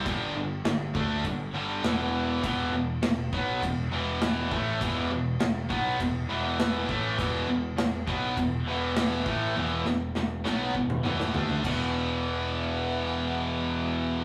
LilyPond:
<<
  \new Staff \with { instrumentName = "Distorted electric guitar" } { \clef bass \time 4/4 \key e \minor \tempo 4 = 101 <g, d g>8 <g, d>8 <g, d>8 <d a d'>8 <g, d>8 <g, d g>8 <e, b, e>4 | <e, b, e>8 <e, b,>8 <e, b,>8 <b, fis b>8 <e, b,>8 <e, b, e>4 <a, e a>8 | <e, b, e>8 <e, b,>8 <e, b,>8 <b, fis b>8 <e, b,>8 <e, b, e>4 <a, e a>8 | <e, b, e>8 <e, b,>8 <e, b,>8 <b, fis b>8 <e, b,>8 <e, b, e>4 <a, e a>8 |
<e, b, e>8 <e, b,>8 <e, b,>8 <b, fis b>8 <e, b,>8 <e, b, e>8 <d a d'>8 <e, b, e>8~ | <e, b, e>1 | }
  \new Staff \with { instrumentName = "Distorted electric guitar" } { \clef bass \time 4/4 \key e \minor <g, d g>8 <g, d>8 <g, d>8 <d a d'>8 <g, d>8 <g, d g>8 <e, b, e>4 | <e, b, e>8 <e, b,>8 <e, b,>8 <b, fis b>8 <e, b,>8 <e, b, e>4 <a, e a>8 | <e, b, e>8 <e, b,>8 <e, b,>8 <b, fis b>8 <e, b,>8 <e, b, e>4 <a, e a>8 | <e, b, e>8 <e, b,>8 <e, b,>8 <b, fis b>8 <e, b,>8 <e, b, e>4 <a, e a>8 |
<e, b, e>8 <e, b,>8 <e, b,>8 <b, fis b>8 <e, b,>8 <e, b, e>8 <d a d'>8 <e, b, e>8~ | <e, b, e>1 | }
  \new Staff \with { instrumentName = "Distorted electric guitar" } { \clef bass \time 4/4 \key e \minor <g, d g>8 <g, d>8 <g, d>8 <d a d'>8 <g, d>8 <g, d g>8 <e, b, e>4 | <e, b, e>8 <e, b,>8 <e, b,>8 <b, fis b>8 <e, b,>8 <e, b, e>4 <a, e a>8 | <e, b, e>8 <e, b,>8 <e, b,>8 <b, fis b>8 <e, b,>8 <e, b, e>4 <a, e a>8 | <e, b, e>8 <e, b,>8 <e, b,>8 <b, fis b>8 <e, b,>8 <e, b, e>4 <a, e a>8 |
<e, b, e>8 <e, b,>8 <e, b,>8 <b, fis b>8 <e, b,>8 <e, b, e>8 <d a d'>8 <e, b, e>8~ | <e, b, e>1 | }
  \new Staff \with { instrumentName = "Picked electric bass" } { \clef bass \time 4/4 \key e \minor g,,8 g,,8 g,,8 d,8 g,,8 g,,8 e,,4 | e,,8 e,,8 e,,8 b,,8 e,,8 e,,4 a,,8 | e,,8 e,,8 e,,8 b,,8 e,,8 e,,4 a,,8 | e,,8 e,,8 e,,8 b,,8 e,,8 e,,4 a,,8 |
e,,8 e,,8 e,,8 b,,8 e,,8 e,,8 d,8 e,,8~ | e,,1 | }
  \new DrumStaff \with { instrumentName = "Drums" } \drummode { \time 4/4 <cymc bd>4 <cymc sn>8 bd8 <cymc bd>4 <cymc sn>4 | <cymc bd>4 <cymc sn>8 bd8 <cymc bd>4 <cymc sn>8 bd8 | <cymc bd>4 <cymc sn>8 bd8 <cymc bd>4 <cymc sn>8 bd8 | <cymc bd>4 <cymc sn>8 bd8 <cymc bd>4 <cymc sn>8 bd8 |
tommh8 sn8 sn8 sn8 bd16 toml16 toml16 sn16 tomfh16 tomfh16 <cymc bd>8 | r4 r4 r4 r4 | }
>>